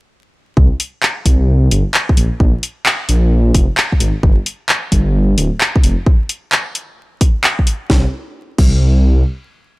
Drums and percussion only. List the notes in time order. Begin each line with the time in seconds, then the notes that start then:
0.57 kick
0.80 open hi-hat
1.03 clap
1.26 kick, open hi-hat
1.71 open hi-hat
1.94 clap
2.09 kick
2.17 open hi-hat
2.40 kick
2.63 open hi-hat
2.86 clap
3.09 open hi-hat
3.55 kick, open hi-hat
3.77 clap
3.92 kick
4.00 open hi-hat
4.23 kick
4.46 open hi-hat
4.69 clap
4.92 kick, open hi-hat
5.38 open hi-hat
5.61 clap
5.76 kick
5.84 open hi-hat
6.06 kick
6.29 open hi-hat
6.52 clap
6.75 open hi-hat
7.21 kick, open hi-hat
7.44 clap
7.59 kick
7.67 open hi-hat
7.90 kick, snare
8.58 kick, crash